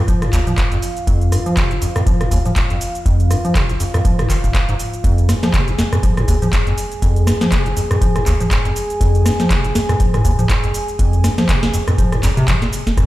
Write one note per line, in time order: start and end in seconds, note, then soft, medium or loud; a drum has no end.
0.00 5.05 F4 medium
0.00 5.05 F5 medium
0.08 0.24 F3 medium
0.08 kick loud
0.08 closed hi-hat medium
0.08 shaker soft
0.22 0.31 G#2 medium
0.22 cross-stick medium
0.22 closed hi-hat soft
0.22 shaker soft
0.33 0.41 D#2 loud
0.33 kick medium
0.33 clap medium
0.33 open hi-hat loud
0.33 shaker medium
0.47 0.53 F3 medium
0.47 closed hi-hat soft
0.47 mid tom medium
0.47 shaker soft
0.58 kick loud
0.58 clap loud
0.58 closed hi-hat medium
0.58 shaker soft
0.72 0.78 F2 medium
0.72 closed hi-hat soft
0.72 shaker soft
0.82 open hi-hat loud
0.82 shaker medium
0.97 closed hi-hat soft
0.97 shaker soft
1.07 1.34 F2 medium
1.07 kick loud
1.07 closed hi-hat medium
1.07 shaker soft
1.21 closed hi-hat soft
1.21 shaker soft
1.32 1.40 G#2 loud
1.32 cross-stick medium
1.32 open hi-hat loud
1.32 shaker medium
1.46 1.58 F3 medium
1.46 closed hi-hat soft
1.46 shaker soft
1.57 1.72 C3 medium
1.57 kick loud
1.57 clap loud
1.57 closed hi-hat medium
1.57 shaker soft
1.71 1.75 F2 medium
1.71 closed hi-hat soft
1.71 shaker soft
1.82 1.86 F2 medium
1.82 open hi-hat loud
1.82 shaker medium
1.96 2.02 F2 medium
1.96 cross-stick medium
1.96 closed hi-hat soft
1.96 mid tom medium
1.96 shaker soft
2.06 2.22 F3 medium
2.06 kick loud
2.06 closed hi-hat medium
2.06 shaker soft
2.21 2.29 G#2 medium
2.21 cross-stick medium
2.21 closed hi-hat soft
2.21 mid tom medium
2.21 shaker soft
2.31 2.39 D#2 loud
2.31 kick medium
2.31 open hi-hat loud
2.31 shaker medium
2.45 2.51 F3 medium
2.45 closed hi-hat soft
2.45 mid tom medium
2.45 shaker soft
2.56 kick loud
2.56 clap loud
2.56 closed hi-hat medium
2.56 shaker soft
2.70 2.76 F2 medium
2.70 closed hi-hat soft
2.70 shaker soft
2.81 open hi-hat loud
2.81 shaker medium
2.95 closed hi-hat soft
2.95 shaker soft
3.06 3.32 F2 loud
3.06 kick loud
3.06 closed hi-hat medium
3.06 shaker soft
3.20 closed hi-hat soft
3.20 shaker soft
3.31 3.38 G#2 loud
3.31 cross-stick medium
3.31 open hi-hat loud
3.31 shaker medium
3.45 3.57 F3 medium
3.45 closed hi-hat soft
3.45 shaker soft
3.55 3.71 C3 medium
3.55 kick loud
3.55 clap loud
3.55 closed hi-hat medium
3.55 shaker soft
3.69 3.73 F2 medium
3.69 closed hi-hat soft
3.69 shaker soft
3.80 3.85 F2 medium
3.80 open hi-hat loud
3.80 shaker medium
3.94 4.00 F2 medium
3.94 cross-stick medium
3.94 closed hi-hat soft
3.94 mid tom medium
3.94 shaker soft
4.05 4.21 F3 medium
4.05 kick loud
4.05 closed hi-hat medium
4.05 shaker soft
4.19 4.28 G#2 medium
4.19 cross-stick medium
4.19 closed hi-hat soft
4.19 shaker soft
4.30 4.34 D#3 medium
4.30 kick medium
4.30 clap medium
4.30 open hi-hat loud
4.30 shaker medium
4.44 4.50 F1 medium
4.44 closed hi-hat soft
4.44 mid tom medium
4.44 shaker soft
4.54 kick loud
4.54 clap loud
4.54 closed hi-hat medium
4.54 shaker soft
4.69 4.74 G#2 loud
4.69 closed hi-hat soft
4.69 shaker soft
4.80 open hi-hat loud
4.80 shaker medium
4.94 closed hi-hat soft
4.94 shaker soft
5.04 5.30 F2 medium
5.04 12.98 G#4 medium
5.04 12.98 G#5 medium
5.04 kick loud
5.04 closed hi-hat medium
5.04 shaker soft
5.18 closed hi-hat soft
5.18 shaker soft
5.29 5.37 G#2 loud
5.29 cross-stick medium
5.29 snare medium
5.29 open hi-hat loud
5.29 shaker medium
5.43 5.55 F3 medium
5.43 snare medium
5.43 closed hi-hat soft
5.43 shaker soft
5.54 5.69 C3 medium
5.54 kick loud
5.54 clap loud
5.54 closed hi-hat medium
5.54 shaker soft
5.68 5.71 F2 medium
5.68 closed hi-hat soft
5.68 shaker soft
5.79 5.83 F2 medium
5.79 snare medium
5.79 open hi-hat loud
5.79 shaker medium
5.93 5.98 F2 medium
5.93 cross-stick medium
5.93 closed hi-hat soft
5.93 mid tom medium
5.93 shaker soft
6.03 6.19 F3 medium
6.03 kick loud
6.03 closed hi-hat medium
6.03 shaker soft
6.17 6.26 G#2 medium
6.17 cross-stick medium
6.17 closed hi-hat soft
6.17 mid tom medium
6.17 shaker soft
6.28 6.36 D#2 loud
6.28 kick medium
6.28 open hi-hat loud
6.28 shaker medium
6.42 6.48 F3 medium
6.42 closed hi-hat soft
6.42 mid tom medium
6.42 shaker soft
6.53 kick loud
6.53 clap loud
6.53 closed hi-hat medium
6.53 shaker soft
6.67 6.73 F2 medium
6.67 closed hi-hat soft
6.67 shaker soft
6.78 open hi-hat loud
6.78 shaker medium
6.92 closed hi-hat soft
6.92 shaker soft
7.02 7.29 F2 medium
7.02 kick loud
7.02 closed hi-hat medium
7.02 shaker soft
7.16 closed hi-hat soft
7.16 shaker soft
7.27 7.35 G#2 loud
7.27 cross-stick medium
7.27 snare medium
7.27 open hi-hat loud
7.27 shaker medium
7.41 7.54 F3 medium
7.41 snare medium
7.41 closed hi-hat soft
7.41 shaker soft
7.52 7.68 C3 medium
7.52 kick loud
7.52 clap loud
7.52 closed hi-hat medium
7.52 shaker soft
7.66 7.70 F2 medium
7.66 closed hi-hat soft
7.66 shaker soft
7.77 7.81 F2 medium
7.77 open hi-hat loud
7.77 shaker medium
7.91 7.97 F2 medium
7.91 cross-stick medium
7.91 closed hi-hat soft
7.91 mid tom medium
7.91 shaker soft
8.02 8.17 F3 medium
8.02 kick loud
8.02 closed hi-hat medium
8.02 shaker soft
8.16 8.25 G#2 medium
8.16 cross-stick medium
8.16 closed hi-hat soft
8.16 shaker soft
8.26 8.34 D#2 loud
8.26 kick medium
8.26 clap medium
8.26 open hi-hat loud
8.26 shaker medium
8.40 8.46 F3 medium
8.40 closed hi-hat soft
8.40 mid tom medium
8.40 shaker soft
8.51 kick loud
8.51 clap loud
8.51 closed hi-hat medium
8.51 shaker soft
8.65 8.71 F2 medium
8.65 closed hi-hat soft
8.65 shaker soft
8.76 open hi-hat medium
8.76 shaker medium
8.90 closed hi-hat soft
8.90 shaker soft
9.01 9.27 F2 medium
9.01 kick loud
9.01 closed hi-hat medium
9.01 shaker soft
9.15 closed hi-hat soft
9.15 shaker soft
9.26 9.33 G#2 loud
9.26 cross-stick medium
9.26 snare medium
9.26 open hi-hat loud
9.26 shaker medium
9.40 9.52 F3 medium
9.40 snare medium
9.40 closed hi-hat soft
9.40 shaker soft
9.50 9.66 C3 medium
9.50 kick loud
9.50 clap loud
9.50 closed hi-hat medium
9.50 shaker soft
9.64 9.68 F2 medium
9.64 closed hi-hat soft
9.64 shaker soft
9.75 9.80 F2 medium
9.75 snare medium
9.75 open hi-hat loud
9.75 shaker medium
9.89 9.95 F2 medium
9.89 cross-stick medium
9.89 closed hi-hat soft
9.89 mid tom medium
9.89 shaker soft
10.00 10.16 F3 medium
10.00 kick loud
10.00 closed hi-hat medium
10.00 shaker soft
10.14 10.23 G#2 medium
10.14 cross-stick medium
10.14 closed hi-hat soft
10.14 mid tom medium
10.14 shaker soft
10.25 10.32 D#2 loud
10.25 kick medium
10.25 open hi-hat loud
10.25 shaker medium
10.39 10.45 F3 medium
10.39 closed hi-hat soft
10.39 mid tom medium
10.39 shaker soft
10.49 kick loud
10.49 clap loud
10.49 closed hi-hat loud
10.49 shaker soft
10.64 10.69 F2 medium
10.64 closed hi-hat soft
10.64 shaker soft
10.74 open hi-hat medium
10.74 shaker medium
10.88 closed hi-hat soft
10.88 shaker soft
10.99 11.26 F2 loud
10.99 kick loud
10.99 closed hi-hat medium
10.99 shaker soft
11.13 closed hi-hat soft
11.13 shaker soft
11.24 11.32 G#2 loud
11.24 cross-stick medium
11.24 snare medium
11.24 open hi-hat loud
11.24 shaker medium
11.38 11.50 F3 medium
11.38 snare medium
11.38 closed hi-hat soft
11.38 shaker soft
11.49 11.64 C3 medium
11.49 kick loud
11.49 clap loud
11.49 closed hi-hat medium
11.49 shaker soft
11.63 11.66 F2 medium
11.63 snare medium
11.63 closed hi-hat soft
11.63 shaker soft
11.74 11.78 F2 medium
11.74 open hi-hat loud
11.74 shaker medium
11.88 11.93 F2 medium
11.88 cross-stick medium
11.88 closed hi-hat soft
11.88 mid tom medium
11.88 shaker soft
11.98 12.14 F3 medium
11.98 kick loud
11.98 closed hi-hat medium
11.98 shaker soft
12.12 12.21 G#2 medium
12.12 cross-stick medium
12.12 closed hi-hat soft
12.12 shaker soft
12.23 12.28 F2 loud
12.23 kick medium
12.23 clap medium
12.23 open hi-hat loud
12.23 shaker medium
12.37 12.46 C3 loud
12.37 closed hi-hat soft
12.37 mid tom loud
12.37 shaker soft
12.48 12.56 F3 medium
12.48 kick loud
12.48 clap loud
12.48 closed hi-hat loud
12.48 shaker soft
12.62 12.68 A#2 medium
12.62 snare soft
12.62 closed hi-hat soft
12.62 shaker soft
12.73 open hi-hat loud
12.73 shaker medium
12.87 kick medium
12.87 snare medium
12.87 closed hi-hat soft
12.87 shaker soft
12.97 13.05 F2 medium
12.97 13.06 F4 medium
12.97 13.06 F5 medium
12.97 kick loud
12.97 cross-stick medium
12.97 closed hi-hat medium
12.97 mid tom medium
12.97 shaker soft